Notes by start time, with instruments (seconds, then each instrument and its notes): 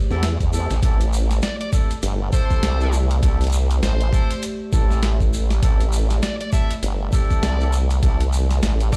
Already playing: ambient pad A3 G4 C5
0.10 wobble bass E2, horn section C4 E4 G4 A4, snare, shekere
0.23 snare, closed hi-hat, shekere
0.40 wobble bass E2, kick, closed hi-hat, shekere
0.53 horn section C4 E4 G4 A4, shekere
0.70 wobble bass A1, snare, closed hi-hat, shekere
0.83 wobble bass A1, horn section C4 E4 G4 A4, ambient pad D5, kick, closed hi-hat, shekere
1.01 closed hi-hat, shekere
1.13 shekere
1.31 snare, closed hi-hat, shekere
1.42 lead electric guitar D5, snare, closed hi-hat, shekere
1.61 lead electric guitar D5, closed hi-hat
1.73 horn section C4 E4 G4 A4, kick, shekere
1.91 closed hi-hat, shekere
2.03 wobble bass G1, closed hi-hat, shekere
2.33 horn section C4 E4 G4 A4, lead electric guitar C5, kick, shekere
2.50 kick, shekere
2.63 wobble bass C2, snare, closed hi-hat, shekere
2.80 horn section C4 E4 G4 A4, shekere
2.93 shekere
3.10 closed hi-hat, shekere
3.23 wobble bass C2, horn section C4 E4 G4 A4, kick, closed hi-hat, shekere
3.41 closed hi-hat, shekere
3.44 closed hi-hat
3.47 closed hi-hat
3.50 closed hi-hat, shekere
3.71 closed hi-hat, shekere
3.83 wobble bass A1, lead electric guitar C5, snare, closed hi-hat, shekere
4.01 closed hi-hat
4.13 horn section C4 E4 G4 A4, kick, shekere
4.31 closed hi-hat, shekere
4.43 closed hi-hat, shekere
4.73 wobble bass A1, horn section C4 E4 G4 A4, kick, shekere
4.91 snare, shekere
5.02 snare, closed hi-hat, shekere
5.20 kick, shekere
5.33 shekere
5.50 snare, closed hi-hat, shekere
5.63 wobble bass A1, horn section C4 E4 G4 A4, kick, closed hi-hat, shekere
5.80 closed hi-hat, shekere
5.92 shekere
6.10 snare, closed hi-hat, shekere
6.23 lead electric guitar D5, snare, closed hi-hat, shekere
6.41 lead electric guitar D5, closed hi-hat
6.53 horn section C4 E4 G4 A4, lead electric guitar E5, kick, shekere
6.71 closed hi-hat, shekere
6.83 wobble bass G1, closed hi-hat, shekere
7.13 horn section C4 E4 G4 A4, kick, shekere
7.30 kick, shekere
7.43 wobble bass C2, lead electric guitar D5, snare, closed hi-hat, shekere
7.61 horn section C4 E4 G4 A4, shekere
7.73 shekere
7.90 closed hi-hat, shekere
8.03 wobble bass C2, horn section C4 E4 G4 A4, kick, closed hi-hat, shekere
8.20 closed hi-hat, shekere
8.33 shekere
8.51 snare, closed hi-hat, shekere
8.63 wobble bass A1, snare, closed hi-hat, shekere
8.80 closed hi-hat, shekere
8.93 wobble bass E2, horn section C4 E4 G4 A4, lead electric guitar D5, kick, shekere